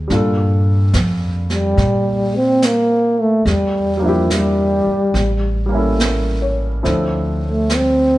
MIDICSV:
0, 0, Header, 1, 6, 480
1, 0, Start_track
1, 0, Tempo, 842697
1, 63, Time_signature, 4, 2, 24, 8
1, 4659, End_track
2, 0, Start_track
2, 0, Title_t, "Grand piano"
2, 0, Program_c, 0, 0
2, 0, Control_c, 0, 64, 127
2, 0, Note_on_c, 0, 56, 43
2, 0, Note_on_c, 0, 60, 40
2, 0, Note_on_c, 0, 63, 36
2, 0, Note_on_c, 0, 68, 47
2, 44, Note_on_c, 0, 55, 43
2, 55, Note_on_c, 0, 46, 39
2, 58, Note_on_c, 0, 62, 42
2, 59, Note_off_c, 0, 56, 0
2, 60, Note_off_c, 0, 60, 0
2, 64, Note_off_c, 0, 63, 0
2, 64, Note_off_c, 0, 68, 0
2, 69, Note_on_c, 0, 65, 40
2, 71, Control_c, 0, 64, 0
2, 76, Note_on_c, 0, 69, 50
2, 179, Control_c, 0, 64, 127
2, 1960, Note_off_c, 0, 55, 0
2, 1966, Note_off_c, 0, 46, 0
2, 1968, Note_off_c, 0, 62, 0
2, 1973, Note_off_c, 0, 65, 0
2, 1977, Note_off_c, 0, 69, 0
2, 1978, Control_c, 0, 64, 0
2, 2069, Control_c, 0, 64, 127
2, 2263, Note_on_c, 0, 55, 46
2, 2274, Note_on_c, 0, 58, 43
2, 2292, Note_on_c, 0, 62, 45
2, 2309, Note_on_c, 0, 64, 45
2, 2327, Note_on_c, 0, 67, 54
2, 2916, Note_off_c, 0, 55, 0
2, 2922, Note_off_c, 0, 58, 0
2, 2931, Note_off_c, 0, 62, 0
2, 2938, Control_c, 0, 64, 0
2, 2940, Note_off_c, 0, 64, 0
2, 2948, Note_off_c, 0, 67, 0
2, 3050, Control_c, 0, 64, 127
2, 3224, Note_on_c, 0, 55, 43
2, 3241, Note_on_c, 0, 58, 43
2, 3257, Note_on_c, 0, 61, 41
2, 3273, Note_on_c, 0, 64, 44
2, 3290, Note_on_c, 0, 69, 44
2, 3411, Note_on_c, 0, 70, 38
2, 3657, Note_on_c, 0, 73, 39
2, 3795, Note_off_c, 0, 70, 0
2, 3884, Note_off_c, 0, 55, 0
2, 3887, Note_off_c, 0, 64, 0
2, 3888, Note_off_c, 0, 69, 0
2, 3890, Note_on_c, 0, 53, 43
2, 3893, Note_off_c, 0, 58, 0
2, 3893, Note_on_c, 0, 60, 40
2, 3896, Note_on_c, 0, 64, 37
2, 3897, Note_on_c, 0, 69, 43
2, 3898, Note_on_c, 0, 62, 36
2, 3901, Note_off_c, 0, 61, 0
2, 3907, Control_c, 0, 64, 0
2, 3998, Note_off_c, 0, 73, 0
2, 4004, Control_c, 0, 64, 127
2, 4659, Note_off_c, 0, 53, 0
2, 4659, Note_off_c, 0, 60, 0
2, 4659, Note_off_c, 0, 62, 0
2, 4659, Note_off_c, 0, 64, 0
2, 4659, Note_off_c, 0, 69, 0
2, 4659, End_track
3, 0, Start_track
3, 0, Title_t, "Trombone"
3, 0, Program_c, 1, 57
3, 862, Note_on_c, 1, 55, 86
3, 1340, Note_on_c, 1, 60, 79
3, 1349, Note_off_c, 1, 55, 0
3, 1506, Note_on_c, 1, 58, 86
3, 1515, Note_off_c, 1, 60, 0
3, 1826, Note_on_c, 1, 57, 77
3, 1834, Note_off_c, 1, 58, 0
3, 1980, Note_on_c, 1, 55, 75
3, 1988, Note_off_c, 1, 57, 0
3, 2298, Note_on_c, 1, 53, 70
3, 2307, Note_off_c, 1, 55, 0
3, 2469, Note_on_c, 1, 55, 70
3, 2477, Note_off_c, 1, 53, 0
3, 3424, Note_off_c, 1, 55, 0
3, 4246, Note_on_c, 1, 57, 64
3, 4411, Note_on_c, 1, 60, 78
3, 4420, Note_off_c, 1, 57, 0
3, 4659, Note_off_c, 1, 60, 0
3, 4659, End_track
4, 0, Start_track
4, 0, Title_t, "Upright bass"
4, 0, Program_c, 2, 32
4, 57, Note_on_c, 2, 43, 69
4, 514, Note_off_c, 2, 43, 0
4, 533, Note_on_c, 2, 41, 71
4, 990, Note_off_c, 2, 41, 0
4, 1010, Note_on_c, 2, 46, 70
4, 1945, Note_off_c, 2, 46, 0
4, 1968, Note_on_c, 2, 40, 71
4, 2748, Note_off_c, 2, 40, 0
4, 2928, Note_on_c, 2, 33, 68
4, 3875, Note_off_c, 2, 33, 0
4, 3904, Note_on_c, 2, 38, 68
4, 4659, Note_off_c, 2, 38, 0
4, 4659, End_track
5, 0, Start_track
5, 0, Title_t, "Muted upright bass strokes"
5, 2772, Note_on_c, 9, 29, 31
5, 2829, Note_off_c, 9, 29, 0
5, 4659, End_track
6, 0, Start_track
6, 0, Title_t, "Drums"
6, 56, Note_on_c, 9, 25, 29
6, 56, Note_on_c, 9, 38, 25
6, 113, Note_off_c, 9, 38, 0
6, 533, Note_on_c, 9, 38, 38
6, 533, Note_on_c, 9, 44, 53
6, 590, Note_off_c, 9, 38, 0
6, 590, Note_off_c, 9, 44, 0
6, 853, Note_on_c, 9, 38, 25
6, 910, Note_off_c, 9, 38, 0
6, 1012, Note_off_c, 9, 25, 0
6, 1012, Note_on_c, 9, 25, 30
6, 1012, Note_on_c, 9, 38, 24
6, 1069, Note_off_c, 9, 38, 0
6, 1494, Note_on_c, 9, 38, 37
6, 1494, Note_on_c, 9, 44, 50
6, 1551, Note_off_c, 9, 38, 0
6, 1551, Note_off_c, 9, 44, 0
6, 1973, Note_off_c, 9, 25, 0
6, 1973, Note_on_c, 9, 25, 38
6, 1973, Note_on_c, 9, 38, 25
6, 2030, Note_off_c, 9, 38, 0
6, 2451, Note_on_c, 9, 38, 39
6, 2451, Note_on_c, 9, 44, 49
6, 2508, Note_off_c, 9, 38, 0
6, 2508, Note_off_c, 9, 44, 0
6, 2932, Note_off_c, 9, 25, 0
6, 2932, Note_on_c, 9, 25, 35
6, 2932, Note_on_c, 9, 38, 23
6, 2989, Note_off_c, 9, 38, 0
6, 3416, Note_on_c, 9, 38, 37
6, 3416, Note_on_c, 9, 44, 50
6, 3473, Note_off_c, 9, 38, 0
6, 3473, Note_off_c, 9, 44, 0
6, 3900, Note_off_c, 9, 25, 0
6, 3900, Note_on_c, 9, 25, 38
6, 3900, Note_on_c, 9, 38, 23
6, 3957, Note_off_c, 9, 38, 0
6, 4383, Note_on_c, 9, 38, 37
6, 4383, Note_on_c, 9, 44, 46
6, 4440, Note_off_c, 9, 38, 0
6, 4440, Note_off_c, 9, 44, 0
6, 4659, Note_off_c, 9, 25, 0
6, 4659, End_track
0, 0, End_of_file